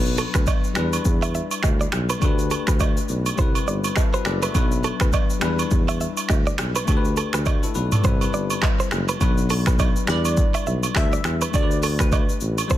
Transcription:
Already playing: tuba B1, tine electric piano F#3 B3 D4 B4
0.06 shaker
0.18 clean electric guitar A4, high agogo, shaker
0.34 tuba D2, clean electric guitar B4, finger snap, kick, cross-stick, shaker
0.47 clean electric guitar D5, kick, high agogo, low woodblock, shaker
0.64 shaker
0.74 tuba E2, tine electric piano G3 D4 E4, finger snap, cross-stick, shaker
0.79 tine electric piano B4
0.93 high agogo, shaker
1.05 tuba E2, kick, shaker
1.22 clean electric guitar E5, high agogo, shaker
1.35 clean electric guitar E5, shaker
1.51 high agogo, shaker
1.63 tuba D2, finger snap, kick, cross-stick, low woodblock, shaker
1.81 clean electric guitar D5, shaker
1.92 tuba B1, finger snap, cross-stick, shaker
2.09 clean electric guitar B4, high agogo, shaker
2.19 tuba D2, tine electric piano A3 D4 G4, kick, high agogo, shaker
2.24 tine electric piano B4
2.39 shaker
2.51 clean electric guitar A4, high agogo, shaker
2.67 tuba D2, clean electric guitar B4, finger snap, kick, cross-stick, shaker
2.80 clean electric guitar D5, kick, high agogo, low woodblock, shaker
2.97 shaker
3.09 tuba B1, shaker
3.26 high agogo, shaker
3.36 tuba C2, tine electric piano G3 C4 E4, clean electric guitar C5, kick, shaker
3.41 tine electric piano B4
3.55 high agogo, shaker
3.67 tuba G1, clean electric guitar D5, shaker
3.84 high agogo, shaker
3.96 tine electric piano E4 A4, finger snap, kick, cross-stick, low woodblock, shaker
4.13 tine electric piano F#4 B4, clean electric guitar C5, shaker
4.25 tuba F#1, tine electric piano A4 D5, finger snap, cross-stick, shaker
4.42 clean electric guitar B4, tine electric piano B4 E5, high agogo, shaker
4.54 tuba B1, tine electric piano F#3 B3 D4 B4, kick, high agogo, shaker
4.72 shaker
4.84 clean electric guitar A4, high agogo, shaker
5.00 tuba D2, clean electric guitar B4, finger snap, kick, cross-stick, shaker
5.13 clean electric guitar D5, kick, high agogo, low woodblock, shaker
5.30 shaker
5.40 tuba E2, tine electric piano G3 D4 E4, finger snap, cross-stick, shaker
5.45 tine electric piano B4
5.59 high agogo, shaker
5.71 tuba E2, kick, shaker
5.88 clean electric guitar E5, high agogo, shaker
6.01 clean electric guitar E5, shaker
6.17 high agogo, shaker
6.29 tuba D2, finger snap, kick, cross-stick, low woodblock, shaker
6.47 clean electric guitar D5, shaker
6.58 tuba B1, finger snap, cross-stick, shaker
6.76 clean electric guitar B4, high agogo, shaker
6.85 tuba D2, tine electric piano A3 D4 G4, kick, high agogo, shaker
6.90 tine electric piano A4
6.97 tine electric piano B4
7.05 shaker
7.17 clean electric guitar A4, high agogo, shaker
7.33 tuba D2, clean electric guitar B4, finger snap, cross-stick, shaker
7.46 clean electric guitar D5, kick, high agogo, low woodblock, shaker
7.63 tine electric piano E4 A4, shaker
7.75 tuba B1, tine electric piano F#4 B4, shaker
7.92 tine electric piano A4 D5, mid tom, high agogo, shaker
8.02 tuba C2, tine electric piano G3 C4 E4, clean electric guitar C5, kick, mid tom, shaker
8.07 tine electric piano B4
8.21 high agogo, shaker
8.34 tuba G1, clean electric guitar D5, shaker
8.50 high agogo, shaker
8.62 finger snap, kick, cross-stick, clap, low woodblock, shaker
8.80 clean electric guitar C5, shaker
8.91 tuba F#1, finger snap, cross-stick, shaker
9.09 clean electric guitar B4, high agogo, shaker
9.20 tuba B1, tine electric piano F#3 B3 D4 B4, kick, high agogo, shaker
9.38 shaker
9.50 clean electric guitar A4, open hi-hat, high agogo, shaker
9.66 clean electric guitar B4, finger snap, kick, cross-stick, shaker
9.79 clean electric guitar D5, kick, high agogo, low woodblock, shaker
9.96 shaker
10.06 tuba E2, tine electric piano G3 D4 E4, synth pluck D5, finger snap, cross-stick, shaker
10.11 tine electric piano B4
10.25 high agogo, shaker
10.37 kick, shaker
10.54 clean electric guitar E5, high agogo, shaker
10.66 tuba B1, clean electric guitar E5, shaker
10.83 high agogo, shaker
10.95 tuba D2, synth pluck E5, finger snap, kick, cross-stick, clap, shaker
11.13 clean electric guitar D5, shaker
11.24 tuba E2, finger snap, cross-stick, shaker
11.41 clean electric guitar B4, high agogo, shaker
11.51 tuba D2, tine electric piano A3 D4 G4, kick, high agogo, shaker
11.55 tine electric piano A4, synth pluck D5
11.63 tine electric piano B4
11.71 shaker
11.83 clean electric guitar A4, open hi-hat, high agogo, shaker
11.99 clean electric guitar B4, synth pluck B4, finger snap, kick, cross-stick, shaker
12.12 clean electric guitar D5, kick, high agogo, low woodblock, shaker
12.29 shaker
12.41 tuba A1, shaker
12.58 high agogo, shaker
12.68 tuba C2, tine electric piano G3 C4 E4, clean electric guitar C5, kick, shaker
12.73 tine electric piano A4

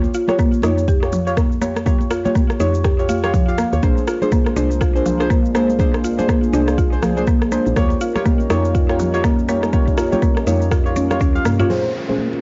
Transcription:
0.04 muted conga, shaker
0.14 synth pluck F4, shaker
0.28 synth stab F4 G4 C#5, cross-stick, muted conga, high conga, low conga, shaker
0.39 synth pluck A#3, kick, high conga, shaker
0.52 muted conga, shaker
0.62 fm bass F2, synth pluck D#4, synth stab F4 G4 C#5, cross-stick, high conga, shaker
0.78 shaker
0.88 synth pluck G4, kick, muted conga, shaker
1.02 synth stab F4 G4 C#5, cross-stick, shaker
1.12 synth pluck F3, muted conga, low conga, shaker
1.27 synth stab F4 G4 C#5, shaker
1.37 synth pluck A#3, kick, cross-stick, muted conga, shaker
1.52 shaker
1.61 synth pluck A#3, synth stab F4 G4 C#5, high conga, shaker
1.76 cross-stick, muted conga, shaker
1.86 synth pluck A#3, synth stab F4 G4 C#5, kick, low conga, shaker
2.01 muted conga, shaker
2.11 synth pluck F4, cross-stick, shaker
2.25 synth stab F4 G4 C#5, muted conga, high conga, low conga, shaker
2.35 synth pluck A#3, kick, high conga, shaker
2.50 cross-stick, muted conga, shaker
2.60 fm bass F2, synth pluck D#4, synth stab F4 G4 C#5, high conga, shaker
2.75 shaker
2.84 synth pluck G4, kick, cross-stick, muted conga, shaker
2.99 synth stab F4 G4 C#5, shaker
3.09 synth pluck F4, muted conga, high conga, shaker
3.24 synth stab F4 G4 C#5, cross-stick, low conga, shaker
3.34 synth pluck F3, kick, muted conga, shaker
3.48 synth stab F4 G4 F5, shaker
3.58 synth pluck A#3, cross-stick, shaker
3.72 fm bass D#2, synth stab F4 G4 C#5, muted conga, shaker
3.83 fm bass A#1, analog synth pad G#3 A#3 D4 F4 A#4, synth pluck A#3, synth stab D4 G#4 C5, kick, low conga, shaker
3.97 muted conga, shaker
4.07 synth pluck F4, cross-stick, shaker
4.22 synth stab D4 G#4 C5, muted conga, high conga, low conga, shaker
4.32 synth pluck A#3, kick, high conga, shaker
4.46 cross-stick, muted conga, shaker
4.56 fm bass C2, synth stab D4 G#4 C5, synth pluck D4, high conga, shaker
4.71 shaker
4.81 synth pluck F4, kick, cross-stick, muted conga, shaker
4.95 synth stab D4 G#4 C5, shaker
5.06 synth pluck F3, muted conga, low conga, shaker
5.20 synth stab D4 G#4 C5, cross-stick, shaker
5.30 synth pluck A#3, kick, muted conga, shaker
5.45 shaker
5.54 synth pluck A#3, synth stab D4 G#4 C5, cross-stick, high conga, shaker
5.70 muted conga, shaker
5.79 synth pluck A#3, synth stab D4 G#4 C5, analog synth pad G#4, kick, low conga, shaker
5.94 cross-stick, muted conga, shaker
6.04 synth pluck F4, shaker
6.18 synth stab D4 G#4 C5, muted conga, high conga, low conga, shaker
6.28 synth pluck A#3, kick, cross-stick, high conga, shaker
6.43 muted conga, shaker
6.53 fm bass C2, synth stab D4 G#4 C5, synth pluck D4, high conga, shaker
6.68 cross-stick, shaker
6.78 synth pluck F4, kick, muted conga, shaker
6.92 synth stab D4 G#4 C5, shaker
7.02 synth pluck F3, cross-stick, muted conga, high conga, shaker
7.17 synth stab D4 G#4 C5, low conga, shaker
7.27 synth pluck A#3, kick, muted conga, shaker
7.42 cross-stick, shaker
7.52 synth pluck A#3, synth stab D4 G#4 C5, shaker
7.66 fm bass A#1, muted conga, shaker
7.76 fm bass D#2, analog synth pad G3 A#3 C#4 D#4 A#4, synth pluck A#3, synth stab F4 G4 C#5, kick, cross-stick, low conga, shaker
7.90 muted conga, shaker
8.01 synth pluck F4, shaker
8.15 synth stab F4 G4 C#5, cross-stick, muted conga, high conga, low conga, shaker
8.25 synth pluck A#3, kick, high conga, shaker
8.40 muted conga, shaker
8.50 fm bass F2, synth pluck D#4, synth stab F4 G4 C#5, cross-stick, high conga, shaker
8.65 shaker
8.75 synth pluck F4, kick, muted conga, shaker
8.89 synth stab F4 G4 C#5, cross-stick, shaker
8.99 synth pluck F3, muted conga, low conga, shaker
9.14 synth stab F4 G4 C#5, shaker
9.24 synth pluck A#3, kick, cross-stick, muted conga, shaker
9.39 shaker
9.48 synth pluck A#3, synth stab F4 G4 C#5, high conga, shaker
9.63 cross-stick, muted conga, shaker
9.73 synth pluck A#3, synth stab F4 G4 C#5, kick, low conga, shaker
9.88 kick, muted conga, shaker
9.98 synth pluck F4, cross-stick, shaker
10.12 synth stab F4 G4 C#5, muted conga, high conga, low conga, shaker
10.22 synth pluck A#3, kick, high conga, shaker
10.37 cross-stick, muted conga, shaker
10.47 fm bass F2, synth pluck D#4, synth stab F4 G4 C#5, high conga, shaker
10.62 shaker
10.71 synth pluck F4, kick, cross-stick, muted conga, shaker
10.86 synth stab F4 G4 C#5, shaker
10.96 synth pluck C#4, muted conga, high conga, shaker
11.11 synth stab F4 G4 C#5, cross-stick, low conga, shaker
11.20 fm bass D#2, synth pluck C#4, kick, muted conga, shaker
11.35 synth stab F4 G4 F5, high tom, shaker
11.45 fm bass G2, synth pluck A#3, cross-stick, mid tom, shaker
11.59 synth pluck F4, synth stab F4 G4 C#5, mid tom, muted conga, shaker
11.70 synth stab A#2 C#4 G#4 C5, analog synth pad G#3 A#3 C#4 F4 A#4, downlifter, low conga
11.84 muted conga
12.09 synth stab A#2 C#4 G#4 C5, muted conga, high conga, low conga
12.18 high conga
12.33 muted conga

